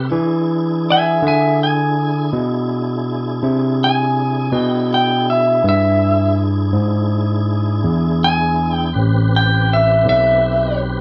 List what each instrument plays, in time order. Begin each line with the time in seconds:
0.09 tine electric piano E3, tonewheel organ D4 E4 G#4
0.90 electric slide guitar E5 G#5
1.22 tine electric piano D3
1.27 electric slide guitar E5 G#5
1.63 electric slide guitar G#5
2.33 tine electric piano B2
3.43 tine electric piano C3
3.84 electric slide guitar G#5
4.50 tine electric piano B2, tonewheel organ D4 E4 G#4
4.55 electric slide guitar G5
4.94 electric slide guitar G5
5.30 electric slide guitar E5
5.64 tine electric piano G2
5.69 electric slide guitar E5
6.73 tine electric piano G#2
7.84 tine electric piano E2
8.24 electric slide guitar G#5
8.72 electric slide guitar G5
8.92 tine electric piano A1, tonewheel organ C4 G4 B4
9.36 electric slide guitar G5
9.73 electric slide guitar E5
10.05 tine electric piano B1
10.09 electric slide guitar E5